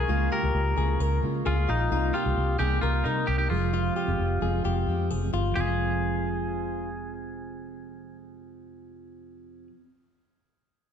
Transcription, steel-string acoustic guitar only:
0.08 C#3 G#3 A#3 F4
0.42 G#3 A#3 F4
0.76 C#3 G#3 A#3 F4
1.22 C#3 G#3 A#3 F4
1.56 G#3 A#3 F4
1.90 C3 G3 A#3 D#4
2.24 G3 A#3 D#4
2.58 C3 G3 A#3 D#4
3.04 C3 G3 A#3 D#4
3.38 G3 A#3 D#4
3.50 F2 C3 F3 G#3 C4 G4
4.06 F3 G#3 C4 G4
4.41 F3 G#3 C4 G4
4.86 F3 G#3 C4 G4
5.21 F3 G#3 C4 G4
5.51 F2
5.55 C3 F3
5.62 G#3 C4

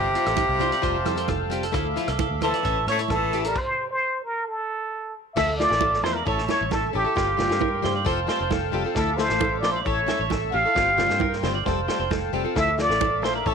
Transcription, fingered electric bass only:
Already playing: G1
0.26 A1
0.49 C2
0.83 F1
1.06 F2
1.29 F1
1.74 D2
2.08 C2
2.30 D2
2.65 A1
2.87 A2
3.10 A1
5.37 D2
5.70 A1
6.03 E2
6.27 A1
6.61 A1
6.95 A1
7.17 G1
7.51 G2
7.84 G2
8.06 F1
8.40 F1
8.73 F1
8.96 D2
9.30 A1
9.64 A#1
9.86 A1
10.19 A1
10.54 A1
10.76 G1
11.10 G2
11.43 G1
11.66 F1
11.99 F1
12.33 F1
12.56 D2
12.89 A1
13.22 A#1
13.46 A1

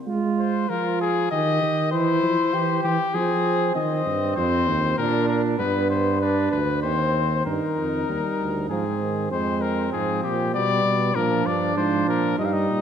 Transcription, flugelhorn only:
0.07 F4
0.70 F4
1.31 G4
1.93 E4
2.54 G4
3.15 C4
3.76 C4
4.98 D4
5.59 B3
6.22 D4
6.83 C4
7.46 D#4
8.71 C4
9.31 C4
10.55 B3
11.15 D4
12.38 D#4

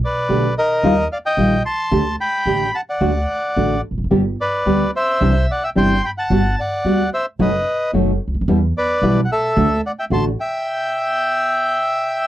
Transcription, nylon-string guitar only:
0.29 B2 D3 A3 B3 G4
0.83 D#3 G3 D#4 F4
1.37 D#3 G3 D#4 F4
1.91 D3 A3 D4 G4
2.46 D3 A3 D4 G4
3.01 D3 A3 D4 F#4
3.56 D3 A3 D4 F#4
4.11 D3 G3 B3 D4 G4
4.66 D3 G3 B3 D4 G4
5.20 C3 E3 G3 D4 E4
5.75 C3 E3 G3 D4 E4
6.30 G3 B3 F#4
6.85 G3 B3 F#4
7.39 B2 F#3 A3 D#4 F#4
7.93 B2 F#3 A3 D#4 F#4
8.48 B2 E3 G3 B3 E4
9.02 B2 E3 G3 B3 E4
9.56 D3 A3 D4 F#4
10.11 D3 A3 D4 F#4

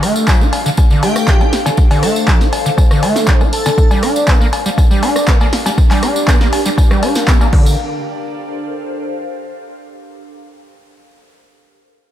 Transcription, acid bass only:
0.03 A3
0.28 F3
0.41 F4
0.66 D3
0.91 D3
1.03 A3
1.28 F3
1.41 F4
1.66 D3
1.91 D3
2.03 A3
2.28 F3
2.41 F4
2.66 D3
2.91 D3
3.03 A3
3.28 F3
3.41 F4
3.66 D3
3.91 G3
4.03 D4
4.28 A#3
4.41 A#3
4.66 G3
4.91 G3
5.03 D4
5.28 A#3
5.41 A#3
5.66 G3
5.91 G3
6.03 D4
6.28 A#3
6.41 A#3
6.66 G3
6.91 G3
7.03 D4
7.28 A#3
7.41 A#3
7.53 D3

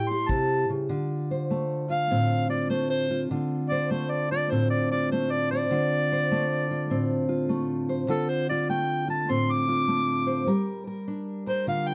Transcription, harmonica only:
Already playing: G5
0.10 C6
0.30 A5
1.91 F5
2.50 D5
2.70 C5
2.90 C5
3.69 D5
3.91 C5
4.10 D5
4.31 D5
4.51 C5
4.70 D5
4.92 D5
5.12 C5
5.31 D5
5.51 D5
8.10 A4
8.29 C5
8.50 D5
8.70 G5
9.10 A5
9.31 C6
9.52 D6
11.49 C5
11.69 F5
11.88 G5

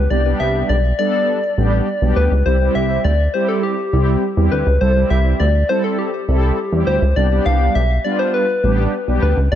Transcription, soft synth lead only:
0.10 D5
0.40 E5
0.69 D5
0.99 D5
2.16 B4
2.46 C5
2.75 E5
3.04 D5
3.34 C5
3.49 A4
3.63 G4
4.52 B4
4.81 C5
5.10 E5
5.40 D5
5.69 C5
5.84 A4
5.99 G4
6.87 C5
7.16 D5
7.46 F5
7.75 E5
8.04 D5
8.19 C5
8.34 B4
9.22 B4
9.52 D5

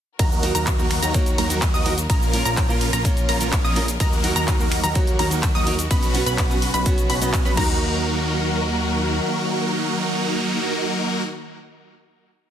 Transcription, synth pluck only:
0.19 A#5
0.55 A#5
1.03 A#5
1.38 A#5
1.74 D#6
2.10 A#5
2.45 A#5
2.93 A#5
3.29 A#5
3.65 D#6
4.00 A#5
4.36 A#5
4.84 A#5
5.19 A#5
5.55 D#6
5.91 B5
6.26 B5
6.74 B5
7.10 B5
7.45 B5
7.57 A#5

